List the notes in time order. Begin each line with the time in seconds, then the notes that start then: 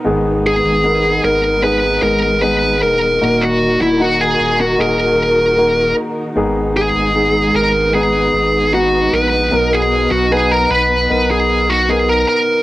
Already playing: B3 D#4
0.05 G#1 G#2 D#3 G#3 B3 D#4 G#4
0.47 G#4
0.65 G#1
0.84 B3 D#4 A#4
1.24 G#1 A#4
1.62 B3 D#4 G#4 B4
2.02 G#1 A#4
2.42 B3 D#4 G#4 B4
2.81 E1 A#4
3.21 D#1 A#2 D#3 A#3 D#4 F#4 A#4
3.42 F#4
3.80 D#1 E4
3.99 A#3 D#4 F#4
4.21 G#4
4.40 D#1
4.61 F#4
4.78 D#1 A#3 D#4 G#4 A#4
5.57 A#3 D#4 F#4
6.36 G#1 G#2 D#3 G#3 B3 D#4 G#4
6.77 G#4
6.96 G#1
7.15 B3 D#4 G#4
7.54 G#1 A#4
7.94 B3 D#4 G#4 B4
8.33 G#1
8.73 B3 D#4 F#4
9.13 A#1 B4
9.51 B1 B2 F#3 B3 D#4 A#4
9.57 A#4
9.73 G#4
10.11 B1 F#4
10.31 B3 D#4 G#4 B4
10.52 A#4
10.70 B1 B4
11.10 B1 B3 D#4 A#4
11.31 G#4
11.70 F#4
11.88 B3 D#4 G#4 A#4
12.09 A#4
12.29 A#4